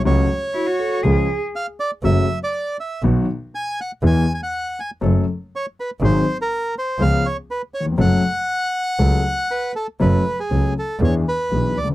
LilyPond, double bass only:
\new Staff \with { instrumentName = "Double bass" } { \clef bass \time 4/4 \key fis \minor \tempo 4 = 120 cis,8 r4. cis,8 r4. | fis,,8 r4. b,,8 r4. | e,8 r4. fis,,8 r4. | gis,,8 r4. cis,8 r4. |
fis,,8 r4. cis,8 r4. | fis,,8 r8 cis,8 r8 e,8 r8 b,,8 d,8 | }